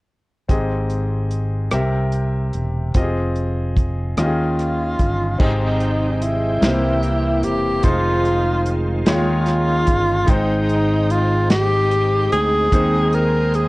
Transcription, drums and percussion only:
0.49 kick, closed hi-hat
0.90 closed hi-hat
1.31 closed hi-hat
1.71 cross-stick, closed hi-hat
2.12 closed hi-hat
2.53 closed hi-hat
2.94 kick, closed hi-hat
3.36 closed hi-hat
3.76 kick, closed hi-hat
4.17 cross-stick, closed hi-hat
4.59 cross-stick, closed hi-hat
4.99 kick, closed hi-hat
5.40 kick, crash
5.81 closed hi-hat
6.22 closed hi-hat
6.62 snare, closed hi-hat
7.03 closed hi-hat
7.43 closed hi-hat
7.83 kick, closed hi-hat
8.25 closed hi-hat
8.66 closed hi-hat
9.06 snare, closed hi-hat
9.46 snare, closed hi-hat
9.87 kick, closed hi-hat
10.28 kick, closed hi-hat
10.69 closed hi-hat
11.10 closed hi-hat
11.50 snare, closed hi-hat
11.91 closed hi-hat
12.32 closed hi-hat
12.72 kick, closed hi-hat
13.13 closed hi-hat
13.54 closed hi-hat

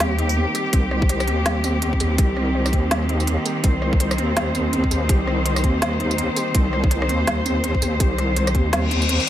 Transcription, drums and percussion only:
0.00 snare, closed hi-hat
0.18 closed hi-hat
0.29 tambourine
0.55 closed hi-hat, tambourine
0.73 kick, closed hi-hat
0.91 cross-stick
1.02 kick
1.09 closed hi-hat
1.20 cross-stick, tambourine
1.28 closed hi-hat
1.46 snare, closed hi-hat
1.64 closed hi-hat, tambourine
1.82 closed hi-hat
1.93 kick
2.00 closed hi-hat, tambourine
2.18 kick, closed hi-hat
2.37 cross-stick
2.66 cross-stick, tambourine
2.73 kick, closed hi-hat
2.91 snare, closed hi-hat
3.09 closed hi-hat
3.20 tambourine
3.27 closed hi-hat
3.46 closed hi-hat, tambourine
3.64 kick, closed hi-hat
3.82 cross-stick
3.93 kick
4.00 closed hi-hat
4.11 cross-stick, tambourine
4.18 closed hi-hat
4.37 snare, closed hi-hat
4.55 closed hi-hat, tambourine
4.73 closed hi-hat
4.84 kick
4.91 closed hi-hat, tambourine
5.09 kick, closed hi-hat
5.27 cross-stick
5.46 closed hi-hat
5.56 cross-stick, tambourine
5.64 kick, closed hi-hat
5.82 snare, closed hi-hat
6.00 closed hi-hat
6.11 tambourine
6.18 closed hi-hat
6.36 closed hi-hat, tambourine
6.55 kick, closed hi-hat
6.73 cross-stick
6.84 kick
6.91 closed hi-hat
7.02 cross-stick
7.09 closed hi-hat
7.27 snare, closed hi-hat
7.46 closed hi-hat, tambourine
7.64 closed hi-hat
7.75 kick
7.82 closed hi-hat, tambourine
8.00 kick, closed hi-hat
8.18 cross-stick, closed hi-hat
8.36 closed hi-hat
8.47 cross-stick, tambourine
8.55 kick, closed hi-hat
8.73 snare, closed hi-hat
8.91 closed hi-hat
9.02 tambourine
9.09 closed hi-hat
9.20 tambourine

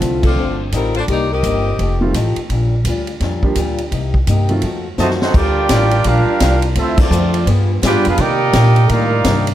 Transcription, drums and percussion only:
0.01 kick, hi-hat pedal, ride
0.23 kick, crash
0.72 kick, hi-hat pedal, ride
0.95 ride
1.08 kick, ride
1.44 kick, hi-hat pedal, ride
1.79 kick, ride
2.14 kick, hi-hat pedal, ride
2.36 ride
2.50 kick, ride
2.85 kick, hi-hat pedal, ride
3.07 ride
3.20 kick, snare, ride
3.43 kick
3.55 kick, hi-hat pedal, ride
3.78 ride
3.92 kick, ride
4.14 kick
4.27 kick, hi-hat pedal, ride
4.49 ride
4.62 kick, ride
4.98 snare, hi-hat pedal
5.10 snare
5.22 snare
5.34 kick, crash
5.69 kick, snare, hi-hat pedal, ride
5.91 ride
6.04 kick, ride
6.40 kick, snare, hi-hat pedal, ride
6.62 ride
6.75 kick, ride
6.98 kick, crash
7.12 hi-hat pedal
7.34 ride
7.47 kick, ride
7.83 kick, snare, hi-hat pedal, ride
8.05 ride
8.18 kick, ride
8.53 kick, snare, hi-hat pedal, ride
8.76 ride
8.89 kick, ride
9.24 kick, snare, hi-hat pedal, ride
9.47 ride

